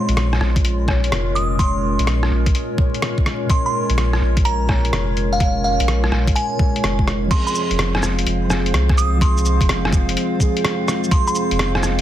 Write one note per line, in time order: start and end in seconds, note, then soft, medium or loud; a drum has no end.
0.00 0.84 A#2 medium
0.00 0.86 G#3 medium
0.00 7.27 G#3 medium
0.00 7.27 C#4 medium
0.00 7.27 F4 medium
0.00 7.27 A#4 medium
0.00 0.88 C#5 medium
0.00 7.27 C#5 medium
0.08 0.39 A#1 loud
0.08 closed hi-hat medium
0.17 cross-stick loud
0.17 closed hi-hat soft
0.33 cross-stick soft
0.40 0.63 A#1 medium
0.40 cross-stick soft
0.56 kick loud
0.56 closed hi-hat medium
0.64 1.11 A#1 medium
0.64 closed hi-hat medium
0.86 0.95 A#2 medium
0.86 0.96 G#3 medium
0.86 kick medium
0.86 cross-stick soft
0.90 0.97 C#5 medium
1.04 closed hi-hat soft
1.12 1.97 F1 loud
1.12 cross-stick loud
1.12 closed hi-hat medium
1.35 1.58 D#6 medium
1.35 closed hi-hat soft
1.55 2.74 A#2 medium
1.55 2.07 C6 medium
1.59 2.76 G#3 medium
1.59 kick loud
1.59 closed hi-hat medium
1.63 2.78 C#5 medium
1.99 2.30 A#1 loud
1.99 closed hi-hat medium
2.07 cross-stick medium
2.07 closed hi-hat soft
2.23 cross-stick medium
2.31 2.53 A#1 medium
2.46 kick loud
2.46 closed hi-hat medium
2.55 closed hi-hat medium
2.76 2.85 A#2 medium
2.76 2.86 G#3 medium
2.76 kick medium
2.80 2.87 C#5 medium
2.94 closed hi-hat soft
3.02 cross-stick loud
3.02 closed hi-hat medium
3.18 kick medium
3.26 cross-stick medium
3.26 closed hi-hat soft
3.45 4.65 A#2 medium
3.50 4.67 G#3 medium
3.50 4.69 C#5 medium
3.50 3.63 C6 medium
3.50 kick loud
3.50 closed hi-hat medium
3.66 3.90 C6 medium
3.89 4.20 A#1 loud
3.89 closed hi-hat medium
3.98 cross-stick medium
3.98 closed hi-hat medium
4.13 cross-stick medium
4.21 4.44 A#1 medium
4.37 kick loud
4.37 closed hi-hat medium
4.45 4.92 A#1 medium
4.45 4.70 A#5 medium
4.45 closed hi-hat medium
4.66 4.76 A#2 medium
4.66 4.77 G#3 medium
4.66 4.78 C#5 medium
4.66 kick medium
4.66 cross-stick soft
4.85 closed hi-hat soft
4.92 5.78 F1 loud
4.92 cross-stick loud
4.92 closed hi-hat medium
5.17 closed hi-hat soft
5.33 6.55 A#2 medium
5.33 5.57 F5 medium
5.40 6.57 G#3 medium
5.40 kick loud
5.40 closed hi-hat medium
5.44 6.59 C#5 loud
5.64 5.90 F5 medium
5.80 6.11 A#1 medium
5.80 closed hi-hat medium
5.88 cross-stick loud
5.88 closed hi-hat medium
6.04 cross-stick medium
6.11 6.34 A#1 medium
6.11 cross-stick medium
6.28 kick loud
6.28 closed hi-hat medium
6.35 7.04 G#5 medium
6.35 closed hi-hat medium
6.57 6.94 A#2 medium
6.57 6.95 G#3 medium
6.57 6.96 C#5 loud
6.57 kick loud
6.76 closed hi-hat soft
6.83 7.30 F1 loud
6.83 cross-stick loud
6.83 closed hi-hat medium
6.97 7.28 A#2 medium
6.97 7.29 G#3 medium
6.97 kick medium
7.01 7.30 C#5 medium
7.08 cross-stick medium
7.08 closed hi-hat soft
7.27 8.46 F3 medium
7.27 8.48 C4 medium
7.31 12.01 G#3 medium
7.31 12.01 C4 medium
7.31 12.01 F4 medium
7.31 8.50 G#4 loud
7.31 12.01 C5 medium
7.31 12.01 F5 medium
7.31 7.43 C6 medium
7.31 kick loud
7.31 closed hi-hat medium
7.31 crash loud
7.47 7.71 C6 medium
7.47 cabasa soft
7.55 cabasa medium
7.70 8.01 F1 loud
7.70 closed hi-hat medium
7.79 cross-stick loud
7.79 closed hi-hat medium
7.95 cross-stick medium
8.02 8.25 F1 medium
8.02 cross-stick medium
8.02 cabasa medium
8.19 closed hi-hat medium
8.26 8.72 F1 medium
8.26 closed hi-hat medium
8.48 8.57 F3 medium
8.48 8.58 C4 medium
8.48 cross-stick medium
8.48 cabasa medium
8.52 8.59 G#4 medium
8.66 closed hi-hat soft
8.73 9.59 C2 loud
8.73 cross-stick loud
8.73 closed hi-hat medium
8.89 kick loud
8.89 cross-stick soft
8.98 9.20 D#6 medium
8.98 closed hi-hat soft
8.98 cabasa medium
9.17 10.36 F3 medium
9.17 10.38 C4 medium
9.21 10.40 G#4 loud
9.21 9.69 C6 medium
9.21 kick loud
9.21 closed hi-hat medium
9.37 cabasa soft
9.45 cabasa medium
9.61 9.92 F1 loud
9.61 kick loud
9.61 closed hi-hat medium
9.69 cross-stick loud
9.69 closed hi-hat medium
9.85 cross-stick medium
9.93 10.15 F1 medium
9.93 kick loud
9.93 cabasa medium
10.09 closed hi-hat medium
10.17 closed hi-hat medium
10.38 10.47 F3 medium
10.38 10.48 C4 medium
10.38 kick medium
10.38 cabasa medium
10.42 10.49 G#4 loud
10.57 closed hi-hat soft
10.64 cross-stick loud
10.64 closed hi-hat medium
10.88 cross-stick medium
10.88 closed hi-hat soft
10.88 cabasa medium
11.04 12.01 F3 medium
11.04 cabasa soft
11.11 12.01 C4 medium
11.11 11.24 C6 medium
11.11 kick loud
11.11 closed hi-hat medium
11.15 12.01 G#4 loud
11.27 11.52 C6 medium
11.27 cabasa soft
11.35 cabasa medium
11.51 11.82 F1 loud
11.51 closed hi-hat medium
11.59 cross-stick loud
11.59 closed hi-hat medium
11.75 cross-stick soft
11.83 12.01 F1 medium
11.83 cross-stick soft
11.83 cabasa medium